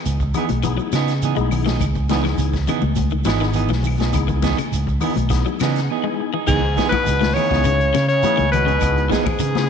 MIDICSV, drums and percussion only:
0, 0, Header, 1, 3, 480
1, 0, Start_track
1, 0, Key_signature, 4, "minor"
1, 0, Tempo, 584226
1, 1490, Time_signature, 4, 2, 24, 8
1, 7965, End_track
2, 0, Start_track
2, 0, Title_t, "Shekere"
2, 48, Note_on_c, 9, 82, 84
2, 131, Note_off_c, 9, 82, 0
2, 164, Note_on_c, 9, 82, 26
2, 247, Note_off_c, 9, 82, 0
2, 281, Note_on_c, 9, 82, 65
2, 363, Note_off_c, 9, 82, 0
2, 406, Note_on_c, 9, 82, 28
2, 488, Note_off_c, 9, 82, 0
2, 525, Note_on_c, 9, 82, 79
2, 608, Note_off_c, 9, 82, 0
2, 644, Note_on_c, 9, 82, 25
2, 727, Note_off_c, 9, 82, 0
2, 759, Note_on_c, 9, 82, 68
2, 841, Note_off_c, 9, 82, 0
2, 883, Note_on_c, 9, 82, 28
2, 965, Note_off_c, 9, 82, 0
2, 1003, Note_on_c, 9, 82, 84
2, 1086, Note_off_c, 9, 82, 0
2, 1127, Note_on_c, 9, 82, 27
2, 1209, Note_off_c, 9, 82, 0
2, 1247, Note_on_c, 9, 82, 63
2, 1329, Note_off_c, 9, 82, 0
2, 1371, Note_on_c, 9, 82, 26
2, 1453, Note_off_c, 9, 82, 0
2, 1487, Note_on_c, 9, 82, 84
2, 1569, Note_off_c, 9, 82, 0
2, 1601, Note_on_c, 9, 82, 26
2, 1684, Note_off_c, 9, 82, 0
2, 1719, Note_on_c, 9, 82, 60
2, 1801, Note_off_c, 9, 82, 0
2, 1838, Note_on_c, 9, 82, 28
2, 1921, Note_off_c, 9, 82, 0
2, 1955, Note_on_c, 9, 82, 89
2, 2037, Note_off_c, 9, 82, 0
2, 2079, Note_on_c, 9, 82, 27
2, 2161, Note_off_c, 9, 82, 0
2, 2200, Note_on_c, 9, 82, 64
2, 2282, Note_off_c, 9, 82, 0
2, 2310, Note_on_c, 9, 82, 26
2, 2393, Note_off_c, 9, 82, 0
2, 2428, Note_on_c, 9, 82, 76
2, 2510, Note_off_c, 9, 82, 0
2, 2547, Note_on_c, 9, 82, 26
2, 2629, Note_off_c, 9, 82, 0
2, 2665, Note_on_c, 9, 82, 75
2, 2748, Note_off_c, 9, 82, 0
2, 2792, Note_on_c, 9, 82, 28
2, 2874, Note_off_c, 9, 82, 0
2, 2903, Note_on_c, 9, 82, 81
2, 2985, Note_off_c, 9, 82, 0
2, 3027, Note_on_c, 9, 82, 31
2, 3109, Note_off_c, 9, 82, 0
2, 3154, Note_on_c, 9, 82, 68
2, 3236, Note_off_c, 9, 82, 0
2, 3273, Note_on_c, 9, 82, 27
2, 3356, Note_off_c, 9, 82, 0
2, 3393, Note_on_c, 9, 82, 87
2, 3475, Note_off_c, 9, 82, 0
2, 3520, Note_on_c, 9, 82, 26
2, 3602, Note_off_c, 9, 82, 0
2, 3643, Note_on_c, 9, 82, 65
2, 3725, Note_off_c, 9, 82, 0
2, 3768, Note_on_c, 9, 82, 29
2, 3850, Note_off_c, 9, 82, 0
2, 3886, Note_on_c, 9, 82, 88
2, 3968, Note_off_c, 9, 82, 0
2, 4012, Note_on_c, 9, 82, 28
2, 4094, Note_off_c, 9, 82, 0
2, 4115, Note_on_c, 9, 82, 70
2, 4197, Note_off_c, 9, 82, 0
2, 4242, Note_on_c, 9, 82, 29
2, 4324, Note_off_c, 9, 82, 0
2, 4351, Note_on_c, 9, 82, 87
2, 4433, Note_off_c, 9, 82, 0
2, 4484, Note_on_c, 9, 82, 25
2, 4566, Note_off_c, 9, 82, 0
2, 4598, Note_on_c, 9, 82, 70
2, 4680, Note_off_c, 9, 82, 0
2, 4728, Note_on_c, 9, 82, 28
2, 4810, Note_off_c, 9, 82, 0
2, 5320, Note_on_c, 9, 82, 92
2, 5402, Note_off_c, 9, 82, 0
2, 5561, Note_on_c, 9, 82, 30
2, 5643, Note_off_c, 9, 82, 0
2, 5802, Note_on_c, 9, 82, 90
2, 5884, Note_off_c, 9, 82, 0
2, 6039, Note_on_c, 9, 82, 27
2, 6121, Note_off_c, 9, 82, 0
2, 6278, Note_on_c, 9, 82, 81
2, 6360, Note_off_c, 9, 82, 0
2, 6525, Note_on_c, 9, 82, 32
2, 6607, Note_off_c, 9, 82, 0
2, 6759, Note_on_c, 9, 82, 89
2, 6842, Note_off_c, 9, 82, 0
2, 7002, Note_on_c, 9, 82, 31
2, 7084, Note_off_c, 9, 82, 0
2, 7235, Note_on_c, 9, 82, 86
2, 7317, Note_off_c, 9, 82, 0
2, 7484, Note_on_c, 9, 82, 28
2, 7566, Note_off_c, 9, 82, 0
2, 7716, Note_on_c, 9, 82, 91
2, 7798, Note_off_c, 9, 82, 0
2, 7965, End_track
3, 0, Start_track
3, 0, Title_t, "Drums"
3, 43, Note_on_c, 9, 42, 66
3, 125, Note_off_c, 9, 42, 0
3, 164, Note_on_c, 9, 36, 64
3, 247, Note_off_c, 9, 36, 0
3, 281, Note_on_c, 9, 42, 53
3, 282, Note_on_c, 9, 64, 78
3, 291, Note_on_c, 9, 75, 59
3, 363, Note_off_c, 9, 42, 0
3, 364, Note_off_c, 9, 64, 0
3, 373, Note_off_c, 9, 75, 0
3, 399, Note_on_c, 9, 42, 51
3, 406, Note_on_c, 9, 63, 80
3, 481, Note_off_c, 9, 42, 0
3, 488, Note_off_c, 9, 63, 0
3, 514, Note_on_c, 9, 42, 68
3, 522, Note_on_c, 9, 36, 60
3, 526, Note_on_c, 9, 63, 70
3, 596, Note_off_c, 9, 42, 0
3, 604, Note_off_c, 9, 36, 0
3, 608, Note_off_c, 9, 63, 0
3, 761, Note_on_c, 9, 42, 50
3, 762, Note_on_c, 9, 63, 90
3, 767, Note_on_c, 9, 75, 61
3, 770, Note_on_c, 9, 38, 66
3, 843, Note_off_c, 9, 42, 0
3, 844, Note_off_c, 9, 63, 0
3, 849, Note_off_c, 9, 75, 0
3, 852, Note_off_c, 9, 38, 0
3, 885, Note_on_c, 9, 42, 50
3, 894, Note_on_c, 9, 38, 26
3, 967, Note_off_c, 9, 42, 0
3, 976, Note_off_c, 9, 38, 0
3, 1004, Note_on_c, 9, 42, 61
3, 1086, Note_off_c, 9, 42, 0
3, 1119, Note_on_c, 9, 63, 73
3, 1201, Note_off_c, 9, 63, 0
3, 1242, Note_on_c, 9, 75, 64
3, 1245, Note_on_c, 9, 46, 58
3, 1248, Note_on_c, 9, 64, 80
3, 1324, Note_off_c, 9, 75, 0
3, 1327, Note_off_c, 9, 46, 0
3, 1330, Note_off_c, 9, 64, 0
3, 1362, Note_on_c, 9, 63, 66
3, 1375, Note_on_c, 9, 38, 67
3, 1444, Note_off_c, 9, 63, 0
3, 1457, Note_off_c, 9, 38, 0
3, 1479, Note_on_c, 9, 64, 66
3, 1482, Note_on_c, 9, 42, 60
3, 1484, Note_on_c, 9, 36, 83
3, 1487, Note_on_c, 9, 75, 61
3, 1561, Note_off_c, 9, 64, 0
3, 1564, Note_off_c, 9, 42, 0
3, 1567, Note_off_c, 9, 36, 0
3, 1570, Note_off_c, 9, 75, 0
3, 1606, Note_on_c, 9, 36, 69
3, 1688, Note_off_c, 9, 36, 0
3, 1720, Note_on_c, 9, 63, 86
3, 1723, Note_on_c, 9, 42, 48
3, 1733, Note_on_c, 9, 38, 62
3, 1803, Note_off_c, 9, 63, 0
3, 1806, Note_off_c, 9, 42, 0
3, 1815, Note_off_c, 9, 38, 0
3, 1847, Note_on_c, 9, 75, 68
3, 1850, Note_on_c, 9, 38, 27
3, 1929, Note_off_c, 9, 75, 0
3, 1932, Note_off_c, 9, 38, 0
3, 1962, Note_on_c, 9, 42, 61
3, 2045, Note_off_c, 9, 42, 0
3, 2083, Note_on_c, 9, 36, 60
3, 2092, Note_on_c, 9, 38, 28
3, 2165, Note_off_c, 9, 36, 0
3, 2174, Note_off_c, 9, 38, 0
3, 2201, Note_on_c, 9, 64, 76
3, 2205, Note_on_c, 9, 42, 51
3, 2213, Note_on_c, 9, 75, 63
3, 2283, Note_off_c, 9, 64, 0
3, 2288, Note_off_c, 9, 42, 0
3, 2295, Note_off_c, 9, 75, 0
3, 2315, Note_on_c, 9, 63, 84
3, 2398, Note_off_c, 9, 63, 0
3, 2432, Note_on_c, 9, 63, 66
3, 2438, Note_on_c, 9, 42, 59
3, 2441, Note_on_c, 9, 36, 69
3, 2514, Note_off_c, 9, 63, 0
3, 2520, Note_off_c, 9, 42, 0
3, 2523, Note_off_c, 9, 36, 0
3, 2670, Note_on_c, 9, 63, 91
3, 2683, Note_on_c, 9, 42, 51
3, 2692, Note_on_c, 9, 38, 72
3, 2700, Note_on_c, 9, 75, 59
3, 2752, Note_off_c, 9, 63, 0
3, 2765, Note_off_c, 9, 42, 0
3, 2774, Note_off_c, 9, 38, 0
3, 2782, Note_off_c, 9, 75, 0
3, 2812, Note_on_c, 9, 38, 26
3, 2895, Note_off_c, 9, 38, 0
3, 2925, Note_on_c, 9, 42, 65
3, 3007, Note_off_c, 9, 42, 0
3, 3030, Note_on_c, 9, 63, 75
3, 3057, Note_on_c, 9, 38, 28
3, 3112, Note_off_c, 9, 63, 0
3, 3139, Note_off_c, 9, 38, 0
3, 3146, Note_on_c, 9, 64, 76
3, 3163, Note_on_c, 9, 46, 57
3, 3180, Note_on_c, 9, 75, 67
3, 3228, Note_off_c, 9, 64, 0
3, 3245, Note_off_c, 9, 46, 0
3, 3262, Note_off_c, 9, 75, 0
3, 3270, Note_on_c, 9, 63, 66
3, 3285, Note_on_c, 9, 42, 50
3, 3294, Note_on_c, 9, 38, 69
3, 3352, Note_off_c, 9, 63, 0
3, 3367, Note_off_c, 9, 42, 0
3, 3376, Note_off_c, 9, 38, 0
3, 3392, Note_on_c, 9, 64, 65
3, 3404, Note_on_c, 9, 36, 90
3, 3407, Note_on_c, 9, 42, 67
3, 3411, Note_on_c, 9, 75, 60
3, 3475, Note_off_c, 9, 64, 0
3, 3486, Note_off_c, 9, 36, 0
3, 3489, Note_off_c, 9, 42, 0
3, 3493, Note_off_c, 9, 75, 0
3, 3526, Note_on_c, 9, 36, 60
3, 3608, Note_off_c, 9, 36, 0
3, 3635, Note_on_c, 9, 63, 92
3, 3643, Note_on_c, 9, 36, 64
3, 3645, Note_on_c, 9, 42, 49
3, 3654, Note_on_c, 9, 38, 70
3, 3717, Note_off_c, 9, 63, 0
3, 3725, Note_off_c, 9, 36, 0
3, 3728, Note_off_c, 9, 42, 0
3, 3737, Note_off_c, 9, 38, 0
3, 3755, Note_on_c, 9, 63, 63
3, 3763, Note_on_c, 9, 42, 56
3, 3768, Note_on_c, 9, 75, 66
3, 3837, Note_off_c, 9, 63, 0
3, 3845, Note_off_c, 9, 42, 0
3, 3851, Note_off_c, 9, 75, 0
3, 3882, Note_on_c, 9, 42, 68
3, 3964, Note_off_c, 9, 42, 0
3, 4002, Note_on_c, 9, 36, 71
3, 4084, Note_off_c, 9, 36, 0
3, 4116, Note_on_c, 9, 64, 82
3, 4121, Note_on_c, 9, 75, 60
3, 4124, Note_on_c, 9, 46, 68
3, 4198, Note_off_c, 9, 64, 0
3, 4203, Note_off_c, 9, 75, 0
3, 4206, Note_off_c, 9, 46, 0
3, 4239, Note_on_c, 9, 63, 77
3, 4245, Note_on_c, 9, 42, 51
3, 4321, Note_off_c, 9, 63, 0
3, 4327, Note_off_c, 9, 42, 0
3, 4360, Note_on_c, 9, 63, 67
3, 4360, Note_on_c, 9, 64, 66
3, 4363, Note_on_c, 9, 36, 69
3, 4365, Note_on_c, 9, 42, 70
3, 4374, Note_on_c, 9, 38, 27
3, 4442, Note_off_c, 9, 63, 0
3, 4442, Note_off_c, 9, 64, 0
3, 4445, Note_off_c, 9, 36, 0
3, 4447, Note_off_c, 9, 42, 0
3, 4456, Note_off_c, 9, 38, 0
3, 4603, Note_on_c, 9, 75, 63
3, 4607, Note_on_c, 9, 42, 53
3, 4609, Note_on_c, 9, 63, 96
3, 4616, Note_on_c, 9, 38, 69
3, 4685, Note_off_c, 9, 75, 0
3, 4689, Note_off_c, 9, 42, 0
3, 4691, Note_off_c, 9, 63, 0
3, 4698, Note_off_c, 9, 38, 0
3, 4731, Note_on_c, 9, 42, 52
3, 4740, Note_on_c, 9, 38, 26
3, 4813, Note_off_c, 9, 42, 0
3, 4822, Note_off_c, 9, 38, 0
3, 5327, Note_on_c, 9, 49, 84
3, 5328, Note_on_c, 9, 36, 89
3, 5329, Note_on_c, 9, 63, 36
3, 5330, Note_on_c, 9, 75, 67
3, 5409, Note_off_c, 9, 49, 0
3, 5410, Note_off_c, 9, 36, 0
3, 5411, Note_off_c, 9, 63, 0
3, 5412, Note_off_c, 9, 75, 0
3, 5568, Note_on_c, 9, 36, 65
3, 5569, Note_on_c, 9, 42, 48
3, 5578, Note_on_c, 9, 38, 72
3, 5651, Note_off_c, 9, 36, 0
3, 5651, Note_off_c, 9, 42, 0
3, 5660, Note_off_c, 9, 38, 0
3, 5688, Note_on_c, 9, 42, 34
3, 5689, Note_on_c, 9, 36, 73
3, 5689, Note_on_c, 9, 63, 92
3, 5693, Note_on_c, 9, 75, 67
3, 5770, Note_off_c, 9, 42, 0
3, 5771, Note_off_c, 9, 36, 0
3, 5771, Note_off_c, 9, 63, 0
3, 5775, Note_off_c, 9, 75, 0
3, 5811, Note_on_c, 9, 42, 66
3, 5818, Note_on_c, 9, 63, 35
3, 5893, Note_off_c, 9, 42, 0
3, 5900, Note_off_c, 9, 63, 0
3, 5925, Note_on_c, 9, 63, 83
3, 5929, Note_on_c, 9, 42, 34
3, 5938, Note_on_c, 9, 38, 70
3, 6008, Note_off_c, 9, 63, 0
3, 6011, Note_off_c, 9, 42, 0
3, 6020, Note_off_c, 9, 38, 0
3, 6045, Note_on_c, 9, 75, 65
3, 6050, Note_on_c, 9, 46, 66
3, 6063, Note_on_c, 9, 64, 74
3, 6128, Note_off_c, 9, 75, 0
3, 6133, Note_off_c, 9, 46, 0
3, 6145, Note_off_c, 9, 64, 0
3, 6170, Note_on_c, 9, 36, 68
3, 6174, Note_on_c, 9, 63, 72
3, 6184, Note_on_c, 9, 38, 31
3, 6252, Note_off_c, 9, 36, 0
3, 6256, Note_off_c, 9, 63, 0
3, 6267, Note_off_c, 9, 38, 0
3, 6286, Note_on_c, 9, 42, 66
3, 6368, Note_off_c, 9, 42, 0
3, 6411, Note_on_c, 9, 42, 31
3, 6493, Note_off_c, 9, 42, 0
3, 6526, Note_on_c, 9, 42, 56
3, 6528, Note_on_c, 9, 75, 66
3, 6529, Note_on_c, 9, 63, 90
3, 6535, Note_on_c, 9, 38, 28
3, 6608, Note_off_c, 9, 42, 0
3, 6610, Note_off_c, 9, 75, 0
3, 6611, Note_off_c, 9, 63, 0
3, 6617, Note_off_c, 9, 38, 0
3, 6648, Note_on_c, 9, 42, 35
3, 6731, Note_off_c, 9, 42, 0
3, 6765, Note_on_c, 9, 42, 69
3, 6771, Note_on_c, 9, 63, 85
3, 6847, Note_off_c, 9, 42, 0
3, 6854, Note_off_c, 9, 63, 0
3, 6887, Note_on_c, 9, 42, 33
3, 6890, Note_on_c, 9, 63, 65
3, 6969, Note_off_c, 9, 42, 0
3, 6972, Note_off_c, 9, 63, 0
3, 7008, Note_on_c, 9, 42, 54
3, 7008, Note_on_c, 9, 75, 69
3, 7015, Note_on_c, 9, 64, 89
3, 7090, Note_off_c, 9, 42, 0
3, 7091, Note_off_c, 9, 75, 0
3, 7097, Note_off_c, 9, 64, 0
3, 7129, Note_on_c, 9, 42, 37
3, 7211, Note_off_c, 9, 42, 0
3, 7243, Note_on_c, 9, 75, 64
3, 7246, Note_on_c, 9, 36, 92
3, 7248, Note_on_c, 9, 42, 77
3, 7251, Note_on_c, 9, 63, 36
3, 7326, Note_off_c, 9, 75, 0
3, 7328, Note_off_c, 9, 36, 0
3, 7330, Note_off_c, 9, 42, 0
3, 7333, Note_off_c, 9, 63, 0
3, 7374, Note_on_c, 9, 42, 32
3, 7457, Note_off_c, 9, 42, 0
3, 7487, Note_on_c, 9, 36, 61
3, 7492, Note_on_c, 9, 42, 52
3, 7501, Note_on_c, 9, 38, 71
3, 7570, Note_off_c, 9, 36, 0
3, 7574, Note_off_c, 9, 42, 0
3, 7583, Note_off_c, 9, 38, 0
3, 7606, Note_on_c, 9, 75, 68
3, 7608, Note_on_c, 9, 36, 74
3, 7611, Note_on_c, 9, 63, 91
3, 7611, Note_on_c, 9, 64, 70
3, 7689, Note_off_c, 9, 75, 0
3, 7690, Note_off_c, 9, 36, 0
3, 7694, Note_off_c, 9, 63, 0
3, 7694, Note_off_c, 9, 64, 0
3, 7726, Note_on_c, 9, 42, 70
3, 7737, Note_on_c, 9, 63, 35
3, 7808, Note_off_c, 9, 42, 0
3, 7819, Note_off_c, 9, 63, 0
3, 7849, Note_on_c, 9, 63, 87
3, 7857, Note_on_c, 9, 38, 64
3, 7931, Note_off_c, 9, 63, 0
3, 7939, Note_off_c, 9, 38, 0
3, 7965, End_track
0, 0, End_of_file